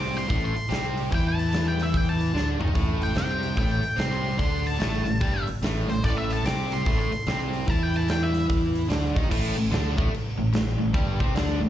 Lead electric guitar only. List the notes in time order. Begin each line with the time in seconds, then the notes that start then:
Already playing: D6
0.18 C6
0.45 C6
1.14 G5
1.28 A5
1.68 G5
1.83 E5
1.97 G5
2.09 A5
3.03 G5
3.18 G5
3.59 G5
3.99 C6
4.12 C6
4.40 C6
4.67 A5
5.90 C5
6.04 D5
6.18 E5
6.33 A5
6.46 D6
6.73 C6
6.99 C6
7.70 A5
7.83 G5
7.97 A5
8.10 G5
8.23 E5